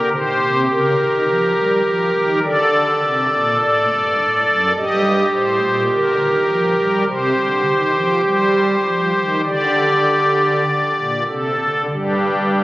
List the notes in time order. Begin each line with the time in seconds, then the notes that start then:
0.13 D#3 G4 C5
0.41 C3
0.70 C#3 A#4
0.99 D#3
1.28 F3
1.56 G3
1.85 F3
2.14 D#3
2.44 D3 A4 D5
3.02 C3
3.32 A#2
3.61 A2 D5
3.91 G2
4.19 A2
4.48 F#2
4.76 G2 G4 D#5
5.34 A2 C5
5.62 A#2
5.92 D3 A#4
6.21 D#3
6.49 F3
6.79 G3
7.08 C3 G4 C5
7.36 D3
7.66 D#3
7.95 F3
8.25 G3 C5
8.85 F3
9.15 D#3
9.45 D3 G4 D5
10.66 D3
10.97 A#2
11.28 C3 A4
11.60 D3
11.91 G2 G3 D4 G4